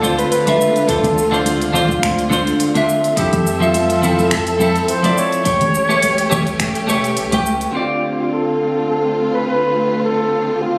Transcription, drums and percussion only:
0.03 high conga, shaker
0.19 closed hi-hat, shaker
0.32 closed hi-hat, shaker
0.47 closed hi-hat, high conga, shaker
0.61 shaker
0.76 closed hi-hat, shaker
0.89 kick, closed hi-hat, shaker
1.04 closed hi-hat, high conga, low conga, shaker
1.18 shaker
1.34 shaker
1.46 closed hi-hat, high conga, shaker
1.62 closed hi-hat, shaker
1.73 low conga, shaker
1.88 kick, high conga, shaker
2.03 finger snap, kick, closed hi-hat, shaker
2.19 closed hi-hat, shaker
2.31 high conga, shaker
2.47 closed hi-hat, shaker
2.60 closed hi-hat, shaker
2.75 closed hi-hat, high conga, shaker
2.89 shaker
3.04 closed hi-hat, shaker
3.17 kick, closed hi-hat, shaker
3.33 closed hi-hat, high conga, low conga, shaker
3.47 shaker
3.62 shaker
3.74 closed hi-hat, high conga, shaker
3.90 closed hi-hat, shaker
4.03 low conga, shaker
4.19 high conga, shaker
4.31 finger snap, kick, closed hi-hat, shaker
4.47 closed hi-hat, shaker
4.60 high conga, shaker
4.76 closed hi-hat, shaker
4.88 closed hi-hat, shaker
5.04 closed hi-hat, high conga, shaker
5.18 shaker
5.32 closed hi-hat, shaker
5.45 kick, closed hi-hat, shaker
5.61 closed hi-hat, high conga, low conga, shaker
5.75 shaker
5.90 shaker
6.02 closed hi-hat, high conga, shaker
6.18 closed hi-hat, shaker
6.32 low conga, shaker
6.47 kick, closed hi-hat, high conga, shaker
6.60 finger snap, kick, closed hi-hat, shaker
6.75 closed hi-hat, shaker
6.89 high conga, shaker
7.04 closed hi-hat, shaker
7.17 closed hi-hat, shaker
7.32 closed hi-hat, high conga, shaker
7.46 shaker
7.61 closed hi-hat, shaker

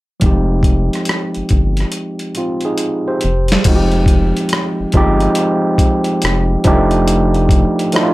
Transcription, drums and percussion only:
0.21 kick, closed hi-hat
0.63 kick, closed hi-hat
0.93 cross-stick, closed hi-hat
1.05 cross-stick, closed hi-hat
1.35 closed hi-hat
1.49 kick, closed hi-hat
1.77 cross-stick, closed hi-hat
1.92 closed hi-hat
2.19 closed hi-hat
2.35 closed hi-hat
2.61 closed hi-hat
2.78 closed hi-hat
3.21 closed hi-hat
3.48 snare, closed hi-hat
3.64 kick, closed hi-hat, crash
3.92 closed hi-hat
4.06 kick, closed hi-hat
4.37 closed hi-hat
4.49 closed hi-hat
4.53 cross-stick
4.92 kick, closed hi-hat
5.20 closed hi-hat
5.35 closed hi-hat
5.78 kick, closed hi-hat
6.04 closed hi-hat
6.22 cross-stick, closed hi-hat
6.64 kick, closed hi-hat
6.91 closed hi-hat
7.08 closed hi-hat
7.34 closed hi-hat
7.49 kick, closed hi-hat
7.79 closed hi-hat
7.92 closed hi-hat
7.96 cross-stick

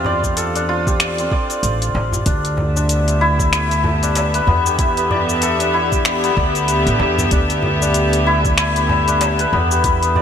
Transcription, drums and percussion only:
0.05 darbuka ka, darbuka dum
0.24 kick, cabasa
0.37 closed hi-hat, cabasa
0.56 closed hi-hat, cabasa
0.68 darbuka ka
0.87 kick, darbuka tek, cabasa
1.00 finger snap, closed hi-hat, cabasa
1.18 closed hi-hat, cabasa
1.32 kick
1.50 closed hi-hat, cabasa
1.63 closed hi-hat, cabasa
1.82 closed hi-hat, cabasa
1.94 darbuka ka, darbuka tek
2.12 darbuka dum, cabasa
2.26 kick, closed hi-hat, cabasa
2.45 closed hi-hat, cabasa
2.57 darbuka ka, darbuka dum
2.77 cabasa
2.89 closed hi-hat, cabasa
3.08 closed hi-hat, cabasa
3.39 kick, darbuka tek, cabasa
3.53 finger snap, closed hi-hat, cabasa
3.71 closed hi-hat, darbuka ka, cabasa
3.84 darbuka ka, darbuka tek, darbuka dum
4.03 closed hi-hat, cabasa
4.15 closed hi-hat, darbuka tek, cabasa
4.34 closed hi-hat, cabasa
4.47 darbuka tek, darbuka dum
4.66 cabasa
4.79 kick, closed hi-hat, cabasa
4.97 closed hi-hat, cabasa
5.10 darbuka ka, darbuka dum
5.29 cabasa
5.42 closed hi-hat, cabasa
5.60 closed hi-hat, cabasa
5.75 darbuka ka
5.92 kick, cabasa
6.05 finger snap, closed hi-hat, cabasa
6.24 closed hi-hat, cabasa
6.37 kick
6.55 closed hi-hat, cabasa
6.68 closed hi-hat, cabasa
6.87 closed hi-hat, cabasa
7.00 darbuka ka, darbuka tek
7.18 darbuka dum, cabasa
7.31 kick, closed hi-hat, cabasa
7.50 closed hi-hat, cabasa
7.62 darbuka ka, darbuka dum
7.82 cabasa
7.94 closed hi-hat, cabasa
8.13 closed hi-hat, cabasa
8.45 kick, darbuka tek, cabasa
8.58 finger snap, closed hi-hat, cabasa
8.76 closed hi-hat, darbuka ka, cabasa
8.89 darbuka ka, darbuka tek, darbuka dum
9.08 closed hi-hat, cabasa
9.21 closed hi-hat, darbuka tek, cabasa
9.39 closed hi-hat, cabasa
9.53 darbuka tek, darbuka dum
9.71 cabasa
9.84 kick, closed hi-hat, cabasa
10.03 closed hi-hat, cabasa
10.15 darbuka ka, darbuka dum

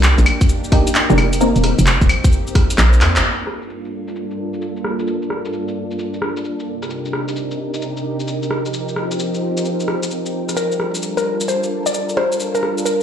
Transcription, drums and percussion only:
0.03 clap, cabasa
0.18 closed hi-hat, cabasa
0.26 open hi-hat, claves
0.41 kick, closed hi-hat, cabasa
0.49 cabasa
0.64 cabasa
0.72 kick, open hi-hat
0.87 closed hi-hat, cabasa
0.95 clap, cabasa
1.10 cabasa
1.18 cross-stick, open hi-hat, claves
1.33 closed hi-hat, cabasa
1.41 cabasa
1.56 closed hi-hat, cabasa
1.64 cross-stick, open hi-hat
1.79 closed hi-hat, cabasa
1.87 clap, cabasa
2.01 kick, closed hi-hat, cabasa
2.09 open hi-hat, claves
2.24 kick, closed hi-hat, cabasa
2.32 cabasa
2.47 cabasa
2.55 kick, cross-stick, open hi-hat
2.70 closed hi-hat, cabasa
2.78 clap, cabasa
2.93 cabasa
3.01 clap, open hi-hat
3.16 clap, closed hi-hat, cabasa
3.24 crash, cabasa
3.39 cabasa
3.47 cross-stick
3.62 cabasa
3.70 cabasa
3.85 cabasa
4.08 cabasa
4.16 cabasa
4.31 cabasa
4.54 cabasa
4.62 cabasa
4.77 cabasa
4.84 cross-stick
4.99 cabasa
5.07 cabasa
5.22 cabasa
5.30 cross-stick
5.45 cabasa
5.53 cabasa
5.68 cabasa
5.91 cabasa
5.99 cabasa
6.14 cabasa
6.22 cross-stick
6.37 cabasa
6.45 cabasa
6.60 cabasa
6.83 cross-stick, cabasa
6.90 cabasa
7.05 cabasa
7.13 cross-stick
7.28 cabasa
7.36 cabasa
7.51 cabasa
7.74 cabasa
7.82 cabasa
7.97 cabasa
8.20 cabasa
8.28 cabasa
8.43 cabasa
8.51 cross-stick
8.66 cabasa
8.73 cabasa
8.88 cabasa
8.96 cross-stick
9.11 cabasa
9.19 cabasa
9.34 cabasa
9.57 cabasa
9.65 cabasa
9.80 cabasa
9.88 cross-stick
10.03 cabasa
10.11 cabasa
10.26 cabasa
10.49 cross-stick, cabasa
10.57 cabasa
10.72 cabasa
10.80 cross-stick
10.95 cabasa
11.03 cabasa
11.18 cabasa
11.40 cabasa
11.48 cabasa
11.63 cabasa
11.86 cabasa
11.94 cabasa
12.09 cabasa
12.17 cross-stick
12.32 cabasa
12.40 cabasa
12.55 cabasa
12.63 cross-stick
12.78 cabasa
12.86 cabasa

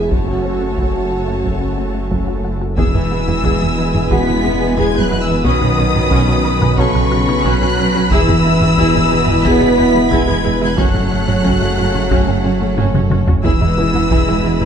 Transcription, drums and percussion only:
0.11 taiko
0.78 taiko
1.45 taiko
2.11 taiko
2.78 taiko
2.94 taiko low-mid
3.28 taiko low-mid
3.44 taiko
3.94 taiko low-mid
4.11 taiko
4.77 taiko
5.44 taiko
5.61 taiko low-mid
5.95 taiko low-mid
6.11 taiko
6.61 taiko low-mid
6.78 taiko
7.44 taiko
8.11 taiko
8.28 taiko low-mid
8.61 taiko low-mid
8.78 taiko
9.28 taiko low-mid
9.45 taiko
10.11 taiko
10.78 taiko
10.95 taiko low-mid
11.28 taiko low-mid
11.45 taiko
11.95 taiko low-mid
12.11 taiko
12.78 taiko low-mid
12.94 taiko mid
13.11 taiko mid
13.27 taiko low
13.44 taiko
13.61 taiko low-mid
13.94 taiko low-mid
14.11 taiko
14.61 taiko low-mid

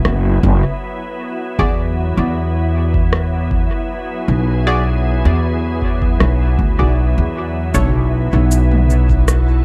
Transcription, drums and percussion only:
0.05 cross-stick
0.43 kick
1.59 kick
2.94 kick
3.13 cross-stick
3.51 kick
5.82 kick
6.02 kick
6.20 cross-stick
6.59 kick
7.74 kick, mid tom, cabasa
8.51 cabasa
8.71 mid tom
8.90 cabasa
9.10 kick
9.28 cross-stick, cabasa

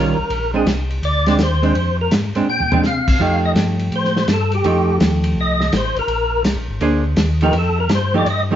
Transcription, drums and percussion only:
0.30 ride
0.67 snare, hi-hat pedal, ride
0.90 ride
1.03 ride
1.26 snare, ride
1.39 snare, hi-hat pedal, ride
1.63 ride
1.75 ride
2.11 snare, hi-hat pedal, ride
2.35 ride
2.60 floor tom
2.72 floor tom
2.83 snare, hi-hat pedal
3.08 kick, crash
3.56 snare, hi-hat pedal, ride
3.79 ride
3.92 ride
4.04 snare
4.16 snare
4.28 snare, hi-hat pedal, ride
4.52 ride
4.64 ride
5.00 snare, hi-hat pedal, ride
5.24 ride
5.60 snare
5.72 snare, hi-hat pedal, ride
5.96 ride
6.08 ride
6.44 snare, hi-hat pedal, ride
6.81 ride
7.16 snare, hi-hat pedal, ride
7.41 ride
7.53 ride
7.89 snare, hi-hat pedal, ride
8.26 ride

